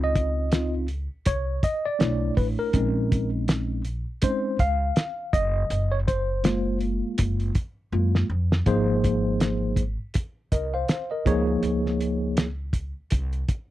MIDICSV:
0, 0, Header, 1, 4, 480
1, 0, Start_track
1, 0, Key_signature, -5, "major"
1, 0, Tempo, 740741
1, 1777, Time_signature, 4, 2, 24, 8
1, 8882, End_track
2, 0, Start_track
2, 0, Title_t, "Tine electric piano"
2, 0, Program_c, 0, 4
2, 0, Note_on_c, 0, 60, 60
2, 0, Note_on_c, 0, 63, 54
2, 0, Note_on_c, 0, 65, 59
2, 24, Note_on_c, 0, 75, 89
2, 314, Note_off_c, 0, 60, 0
2, 316, Note_off_c, 0, 63, 0
2, 318, Note_off_c, 0, 65, 0
2, 338, Note_on_c, 0, 60, 46
2, 338, Note_on_c, 0, 63, 45
2, 343, Note_on_c, 0, 65, 56
2, 474, Note_off_c, 0, 75, 0
2, 554, Note_off_c, 0, 60, 0
2, 554, Note_off_c, 0, 63, 0
2, 556, Note_off_c, 0, 65, 0
2, 822, Note_on_c, 0, 73, 95
2, 1062, Note_on_c, 0, 75, 102
2, 1067, Note_off_c, 0, 73, 0
2, 1202, Note_on_c, 0, 74, 100
2, 1204, Note_off_c, 0, 75, 0
2, 1289, Note_on_c, 0, 57, 53
2, 1292, Note_on_c, 0, 73, 48
2, 1294, Note_on_c, 0, 62, 53
2, 1298, Note_on_c, 0, 64, 59
2, 1516, Note_off_c, 0, 74, 0
2, 1535, Note_on_c, 0, 71, 83
2, 1599, Note_off_c, 0, 71, 0
2, 1678, Note_on_c, 0, 70, 84
2, 1748, Note_off_c, 0, 57, 0
2, 1750, Note_off_c, 0, 73, 0
2, 1751, Note_off_c, 0, 62, 0
2, 1753, Note_off_c, 0, 64, 0
2, 1770, Note_on_c, 0, 56, 64
2, 1773, Note_on_c, 0, 61, 56
2, 1774, Note_on_c, 0, 60, 53
2, 1775, Note_on_c, 0, 63, 69
2, 2131, Note_off_c, 0, 70, 0
2, 2467, Note_off_c, 0, 56, 0
2, 2469, Note_off_c, 0, 61, 0
2, 2470, Note_off_c, 0, 60, 0
2, 2470, Note_off_c, 0, 63, 0
2, 2737, Note_on_c, 0, 56, 52
2, 2738, Note_on_c, 0, 60, 43
2, 2740, Note_on_c, 0, 61, 44
2, 2741, Note_on_c, 0, 63, 50
2, 2746, Note_on_c, 0, 72, 90
2, 2953, Note_off_c, 0, 56, 0
2, 2953, Note_off_c, 0, 60, 0
2, 2955, Note_off_c, 0, 61, 0
2, 2955, Note_off_c, 0, 63, 0
2, 2981, Note_on_c, 0, 77, 109
2, 2988, Note_off_c, 0, 72, 0
2, 3455, Note_on_c, 0, 75, 101
2, 3473, Note_off_c, 0, 77, 0
2, 3833, Note_on_c, 0, 73, 84
2, 3847, Note_off_c, 0, 75, 0
2, 3879, Note_off_c, 0, 73, 0
2, 3937, Note_on_c, 0, 72, 82
2, 4173, Note_on_c, 0, 56, 57
2, 4176, Note_on_c, 0, 58, 55
2, 4177, Note_on_c, 0, 65, 64
2, 4391, Note_off_c, 0, 72, 0
2, 4869, Note_off_c, 0, 56, 0
2, 4870, Note_off_c, 0, 58, 0
2, 4871, Note_off_c, 0, 65, 0
2, 5135, Note_on_c, 0, 56, 46
2, 5140, Note_on_c, 0, 58, 45
2, 5140, Note_on_c, 0, 65, 51
2, 5352, Note_off_c, 0, 56, 0
2, 5354, Note_off_c, 0, 58, 0
2, 5355, Note_off_c, 0, 65, 0
2, 5612, Note_on_c, 0, 58, 81
2, 5614, Note_on_c, 0, 53, 90
2, 5619, Note_on_c, 0, 63, 81
2, 5619, Note_on_c, 0, 68, 77
2, 5622, Note_on_c, 0, 72, 97
2, 6358, Note_off_c, 0, 58, 0
2, 6359, Note_off_c, 0, 53, 0
2, 6361, Note_off_c, 0, 63, 0
2, 6361, Note_off_c, 0, 68, 0
2, 6363, Note_off_c, 0, 72, 0
2, 6816, Note_on_c, 0, 75, 62
2, 6821, Note_on_c, 0, 70, 54
2, 6950, Note_off_c, 0, 75, 0
2, 6952, Note_off_c, 0, 70, 0
2, 6958, Note_on_c, 0, 77, 68
2, 6961, Note_on_c, 0, 72, 61
2, 7185, Note_off_c, 0, 77, 0
2, 7187, Note_off_c, 0, 72, 0
2, 7199, Note_on_c, 0, 75, 63
2, 7203, Note_on_c, 0, 70, 53
2, 7294, Note_on_c, 0, 53, 89
2, 7298, Note_on_c, 0, 58, 81
2, 7302, Note_on_c, 0, 63, 82
2, 7304, Note_on_c, 0, 68, 85
2, 7305, Note_on_c, 0, 73, 105
2, 7426, Note_off_c, 0, 75, 0
2, 7428, Note_off_c, 0, 70, 0
2, 8071, Note_off_c, 0, 53, 0
2, 8073, Note_off_c, 0, 58, 0
2, 8075, Note_off_c, 0, 63, 0
2, 8076, Note_off_c, 0, 68, 0
2, 8077, Note_off_c, 0, 73, 0
2, 8882, End_track
3, 0, Start_track
3, 0, Title_t, "Upright bass"
3, 0, Program_c, 1, 32
3, 0, Note_on_c, 1, 37, 106
3, 689, Note_off_c, 1, 37, 0
3, 820, Note_on_c, 1, 36, 90
3, 1016, Note_off_c, 1, 36, 0
3, 1298, Note_on_c, 1, 35, 93
3, 1495, Note_off_c, 1, 35, 0
3, 1536, Note_on_c, 1, 33, 94
3, 1651, Note_off_c, 1, 33, 0
3, 1775, Note_on_c, 1, 34, 97
3, 2610, Note_off_c, 1, 34, 0
3, 2978, Note_on_c, 1, 37, 91
3, 3175, Note_off_c, 1, 37, 0
3, 3457, Note_on_c, 1, 30, 94
3, 3654, Note_off_c, 1, 30, 0
3, 3695, Note_on_c, 1, 30, 105
3, 4530, Note_off_c, 1, 30, 0
3, 4658, Note_on_c, 1, 30, 96
3, 4855, Note_off_c, 1, 30, 0
3, 5135, Note_on_c, 1, 42, 106
3, 5333, Note_off_c, 1, 42, 0
3, 5376, Note_on_c, 1, 41, 99
3, 5573, Note_off_c, 1, 41, 0
3, 5613, Note_on_c, 1, 32, 97
3, 6449, Note_off_c, 1, 32, 0
3, 6817, Note_on_c, 1, 36, 84
3, 7014, Note_off_c, 1, 36, 0
3, 7297, Note_on_c, 1, 37, 97
3, 7494, Note_off_c, 1, 37, 0
3, 7534, Note_on_c, 1, 37, 97
3, 8370, Note_off_c, 1, 37, 0
3, 8501, Note_on_c, 1, 36, 90
3, 8697, Note_off_c, 1, 36, 0
3, 8882, End_track
4, 0, Start_track
4, 0, Title_t, "Drums"
4, 100, Note_on_c, 9, 42, 78
4, 101, Note_on_c, 9, 36, 92
4, 165, Note_off_c, 9, 36, 0
4, 165, Note_off_c, 9, 42, 0
4, 334, Note_on_c, 9, 42, 94
4, 341, Note_on_c, 9, 38, 107
4, 399, Note_off_c, 9, 42, 0
4, 406, Note_off_c, 9, 38, 0
4, 571, Note_on_c, 9, 42, 73
4, 636, Note_off_c, 9, 42, 0
4, 813, Note_on_c, 9, 42, 101
4, 820, Note_on_c, 9, 36, 94
4, 878, Note_off_c, 9, 42, 0
4, 884, Note_off_c, 9, 36, 0
4, 1056, Note_on_c, 9, 36, 88
4, 1057, Note_on_c, 9, 42, 67
4, 1121, Note_off_c, 9, 36, 0
4, 1122, Note_off_c, 9, 42, 0
4, 1296, Note_on_c, 9, 42, 83
4, 1302, Note_on_c, 9, 38, 106
4, 1361, Note_off_c, 9, 42, 0
4, 1366, Note_off_c, 9, 38, 0
4, 1537, Note_on_c, 9, 36, 89
4, 1539, Note_on_c, 9, 46, 51
4, 1601, Note_off_c, 9, 36, 0
4, 1604, Note_off_c, 9, 46, 0
4, 1771, Note_on_c, 9, 42, 83
4, 1774, Note_on_c, 9, 36, 119
4, 1836, Note_off_c, 9, 42, 0
4, 1839, Note_off_c, 9, 36, 0
4, 2021, Note_on_c, 9, 36, 93
4, 2021, Note_on_c, 9, 42, 78
4, 2086, Note_off_c, 9, 36, 0
4, 2086, Note_off_c, 9, 42, 0
4, 2255, Note_on_c, 9, 42, 97
4, 2262, Note_on_c, 9, 38, 112
4, 2320, Note_off_c, 9, 42, 0
4, 2326, Note_off_c, 9, 38, 0
4, 2492, Note_on_c, 9, 42, 70
4, 2557, Note_off_c, 9, 42, 0
4, 2732, Note_on_c, 9, 42, 102
4, 2739, Note_on_c, 9, 36, 90
4, 2797, Note_off_c, 9, 42, 0
4, 2804, Note_off_c, 9, 36, 0
4, 2976, Note_on_c, 9, 36, 91
4, 2977, Note_on_c, 9, 42, 68
4, 3041, Note_off_c, 9, 36, 0
4, 3041, Note_off_c, 9, 42, 0
4, 3214, Note_on_c, 9, 42, 83
4, 3220, Note_on_c, 9, 38, 106
4, 3279, Note_off_c, 9, 42, 0
4, 3284, Note_off_c, 9, 38, 0
4, 3455, Note_on_c, 9, 36, 114
4, 3459, Note_on_c, 9, 42, 69
4, 3520, Note_off_c, 9, 36, 0
4, 3524, Note_off_c, 9, 42, 0
4, 3695, Note_on_c, 9, 42, 84
4, 3760, Note_off_c, 9, 42, 0
4, 3939, Note_on_c, 9, 42, 75
4, 3940, Note_on_c, 9, 36, 86
4, 4004, Note_off_c, 9, 42, 0
4, 4005, Note_off_c, 9, 36, 0
4, 4172, Note_on_c, 9, 42, 96
4, 4179, Note_on_c, 9, 38, 106
4, 4237, Note_off_c, 9, 42, 0
4, 4244, Note_off_c, 9, 38, 0
4, 4410, Note_on_c, 9, 42, 72
4, 4474, Note_off_c, 9, 42, 0
4, 4652, Note_on_c, 9, 42, 99
4, 4658, Note_on_c, 9, 36, 94
4, 4716, Note_off_c, 9, 42, 0
4, 4723, Note_off_c, 9, 36, 0
4, 4794, Note_on_c, 9, 42, 46
4, 4859, Note_off_c, 9, 42, 0
4, 4891, Note_on_c, 9, 42, 69
4, 4895, Note_on_c, 9, 36, 85
4, 4956, Note_off_c, 9, 42, 0
4, 4959, Note_off_c, 9, 36, 0
4, 5281, Note_on_c, 9, 38, 64
4, 5346, Note_off_c, 9, 38, 0
4, 5522, Note_on_c, 9, 38, 92
4, 5586, Note_off_c, 9, 38, 0
4, 5612, Note_on_c, 9, 42, 76
4, 5614, Note_on_c, 9, 36, 111
4, 5677, Note_off_c, 9, 42, 0
4, 5679, Note_off_c, 9, 36, 0
4, 5858, Note_on_c, 9, 42, 73
4, 5861, Note_on_c, 9, 36, 91
4, 5922, Note_off_c, 9, 42, 0
4, 5925, Note_off_c, 9, 36, 0
4, 6093, Note_on_c, 9, 42, 94
4, 6100, Note_on_c, 9, 38, 104
4, 6158, Note_off_c, 9, 42, 0
4, 6165, Note_off_c, 9, 38, 0
4, 6327, Note_on_c, 9, 36, 81
4, 6329, Note_on_c, 9, 42, 66
4, 6392, Note_off_c, 9, 36, 0
4, 6394, Note_off_c, 9, 42, 0
4, 6570, Note_on_c, 9, 42, 94
4, 6579, Note_on_c, 9, 36, 87
4, 6635, Note_off_c, 9, 42, 0
4, 6644, Note_off_c, 9, 36, 0
4, 6816, Note_on_c, 9, 42, 69
4, 6817, Note_on_c, 9, 36, 83
4, 6881, Note_off_c, 9, 36, 0
4, 6881, Note_off_c, 9, 42, 0
4, 7053, Note_on_c, 9, 42, 80
4, 7059, Note_on_c, 9, 38, 97
4, 7118, Note_off_c, 9, 42, 0
4, 7124, Note_off_c, 9, 38, 0
4, 7297, Note_on_c, 9, 36, 103
4, 7302, Note_on_c, 9, 42, 66
4, 7361, Note_off_c, 9, 36, 0
4, 7366, Note_off_c, 9, 42, 0
4, 7534, Note_on_c, 9, 42, 83
4, 7599, Note_off_c, 9, 42, 0
4, 7686, Note_on_c, 9, 38, 36
4, 7751, Note_off_c, 9, 38, 0
4, 7779, Note_on_c, 9, 42, 72
4, 7844, Note_off_c, 9, 42, 0
4, 8014, Note_on_c, 9, 42, 94
4, 8021, Note_on_c, 9, 38, 101
4, 8079, Note_off_c, 9, 42, 0
4, 8086, Note_off_c, 9, 38, 0
4, 8249, Note_on_c, 9, 36, 76
4, 8251, Note_on_c, 9, 42, 67
4, 8314, Note_off_c, 9, 36, 0
4, 8316, Note_off_c, 9, 42, 0
4, 8492, Note_on_c, 9, 42, 98
4, 8502, Note_on_c, 9, 36, 91
4, 8556, Note_off_c, 9, 42, 0
4, 8567, Note_off_c, 9, 36, 0
4, 8635, Note_on_c, 9, 42, 46
4, 8700, Note_off_c, 9, 42, 0
4, 8738, Note_on_c, 9, 42, 68
4, 8739, Note_on_c, 9, 36, 85
4, 8803, Note_off_c, 9, 42, 0
4, 8804, Note_off_c, 9, 36, 0
4, 8882, End_track
0, 0, End_of_file